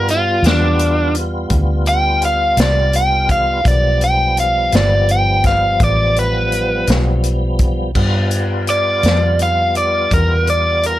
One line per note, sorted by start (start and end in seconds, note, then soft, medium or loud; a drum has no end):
0.00 0.40 G2 medium
0.00 3.61 G3 medium
0.00 3.61 B3 medium
0.00 3.61 F4 medium
0.08 0.44 F4 medium
0.08 closed hi-hat medium
0.43 1.47 E2 medium
0.43 1.14 D4 medium
0.43 closed hi-hat medium
0.47 snare loud
0.79 closed hi-hat medium
1.15 closed hi-hat medium
1.50 2.54 D2 medium
1.50 kick medium
1.50 closed hi-hat medium
1.86 2.22 G5 medium
1.86 closed hi-hat medium
2.22 2.58 F5 medium
2.22 closed hi-hat medium
2.57 3.62 C2 medium
2.57 2.94 D5 medium
2.57 snare loud
2.57 closed hi-hat medium
2.93 3.29 G5 medium
2.93 closed hi-hat medium
3.29 3.65 F5 medium
3.29 kick medium
3.29 closed hi-hat soft
3.64 4.70 B1 medium
3.64 7.91 F3 medium
3.64 7.91 G3 medium
3.64 7.91 B3 medium
3.64 kick loud
3.64 closed hi-hat medium
3.68 4.01 D5 medium
4.01 4.37 G5 medium
4.01 closed hi-hat medium
4.37 4.73 F5 medium
4.37 closed hi-hat medium
4.72 5.77 G1 medium
4.72 5.09 D5 medium
4.72 snare loud
4.72 closed hi-hat medium
5.09 5.45 G5 medium
5.09 closed hi-hat medium
5.44 5.80 F5 medium
5.44 kick medium
5.44 snare soft
5.44 closed hi-hat medium
5.80 6.85 A1 medium
5.80 6.17 D5 medium
5.80 kick loud
5.80 closed hi-hat medium
6.16 6.87 B4 medium
6.16 closed hi-hat soft
6.52 closed hi-hat medium
6.87 7.93 B1 medium
6.87 snare loud
6.87 closed hi-hat medium
7.24 closed hi-hat medium
7.59 kick medium
7.59 closed hi-hat soft
7.95 9.00 G2 medium
7.95 10.99 G3 medium
7.95 10.99 B3 soft
7.95 10.99 F4 soft
7.95 kick medium
7.95 crash medium
8.31 closed hi-hat soft
8.67 9.39 D5 medium
8.67 closed hi-hat soft
9.03 10.08 F2 medium
9.03 snare medium
9.03 closed hi-hat medium
9.39 9.76 F5 medium
9.39 closed hi-hat soft
9.75 10.12 D5 medium
9.75 closed hi-hat soft
10.11 10.99 E2 medium
10.11 10.48 A#4 medium
10.11 kick medium
10.11 closed hi-hat medium
10.47 10.84 D5 medium
10.47 closed hi-hat soft
10.83 10.99 A#4 medium
10.83 closed hi-hat soft